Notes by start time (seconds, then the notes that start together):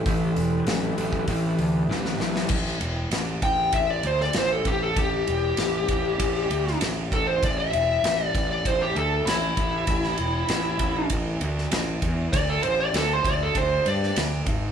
Already playing: A4
0.06 A1 A2 E3 C4 E4 G4 B4, kick, open hi-hat
0.36 E1, open hi-hat
0.67 A1 A2 F#3, snare, open hi-hat
0.97 A1 A2 F#3, open hi-hat
1.13 kick
1.28 A1 A2 E3, kick, open hi-hat
1.59 D2, open hi-hat
1.89 A1 A2 F#3, snare
2.05 snare
2.19 A1 A2 F#3, snare
2.36 snare
2.49 A1, kick, crash
2.66 snare
2.80 E1, ride
3.11 A1, snare, ride
3.42 A1 G5, kick, ride
3.73 A1 E5, kick, ride
3.90 D5
4.03 D2 C5, ride
4.20 D5, snare
4.33 A1, snare, ride
4.38 C5
4.52 A4
4.65 A1 G4, kick, ride
4.83 A4
4.96 A1 G4, kick, ride
5.27 E1, ride
5.57 A1, snare, ride
5.89 A1, kick, ride
6.20 A1, kick, ride
6.50 D2, ride
6.67 snare
6.81 A1, snare, ride
7.12 A1 A4, kick, ride
7.27 C5
7.43 A1 D5, kick, ride
7.59 E5
7.73 E1, ride
8.04 A1, snare, ride
8.26 D5
8.35 A1, kick, ride
8.51 D5
8.65 A1 C5, kick, ride
8.82 G4
8.95 D2 A4, ride
9.26 A1 E4, snare, ride
9.57 A1, kick, ride
9.87 A1, kick, ride
10.04 snare
10.18 E1, ride
10.49 A1, snare, ride
10.79 A1, kick, ride
11.10 A1, kick, ride
11.41 D2, ride
11.58 snare
11.72 A1, snare, ride
12.02 E2, kick, ride
12.33 D2 D5, kick, ride
12.49 A4
12.63 A1 C5, ride
12.80 D5
12.94 D2 A4, snare, ride
13.13 C5
13.24 D2 D5, kick, ride
13.43 A4
13.55 D2 C5, kick, ride
13.86 G2 D5, ride
14.03 snare
14.16 D2, snare, ride
14.46 G#1, kick, ride